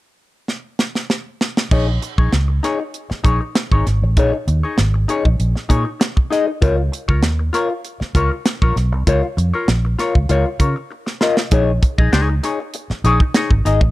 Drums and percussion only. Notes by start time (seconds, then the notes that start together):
0.48 snare
0.79 snare
0.95 snare
1.10 snare
1.41 snare
1.57 snare
1.71 kick, crash
2.02 closed hi-hat
2.18 kick
2.33 snare, closed hi-hat
2.64 snare, closed hi-hat
2.94 closed hi-hat
3.11 snare
3.25 kick, closed hi-hat
3.55 snare, closed hi-hat
3.72 kick
3.86 snare, closed hi-hat
4.17 kick, closed hi-hat
4.48 closed hi-hat
4.78 snare, closed hi-hat
5.09 closed hi-hat
5.25 kick
5.40 closed hi-hat
5.56 snare
5.70 kick, closed hi-hat
6.01 snare, closed hi-hat
6.17 kick
6.32 snare, closed hi-hat
6.62 kick, closed hi-hat
6.93 closed hi-hat
7.09 kick
7.23 snare, closed hi-hat
7.54 snare, closed hi-hat
7.85 closed hi-hat
8.01 snare
8.15 kick, closed hi-hat
8.46 snare, closed hi-hat
8.62 kick
8.76 snare, closed hi-hat
9.07 kick, closed hi-hat
9.38 closed hi-hat
9.68 snare, closed hi-hat
9.99 snare, closed hi-hat
10.15 kick
10.29 closed hi-hat
10.60 kick, closed hi-hat
11.07 snare
11.21 snare
11.37 snare
11.51 kick, closed hi-hat
11.83 kick, closed hi-hat
11.98 kick
12.13 snare, closed hi-hat
12.43 snare, closed hi-hat
12.74 closed hi-hat
12.90 snare
13.05 closed hi-hat
13.20 kick
13.34 snare, closed hi-hat
13.51 kick
13.65 snare, closed hi-hat
13.81 kick